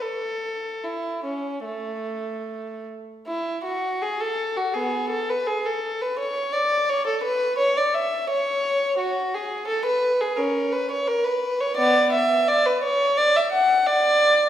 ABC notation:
X:1
M:4/4
L:1/16
Q:1/4=85
K:A
V:1 name="Violin"
A4 E2 C2 A,6 z2 | E2 F2 G A2 F [B,G]2 A B G A2 B | c2 d2 c A B2 c d e2 c4 | F2 G2 A B2 G [C_B]2 =B c _B =B2 c |
[B,d]2 e2 d B c2 d e f2 d4 |]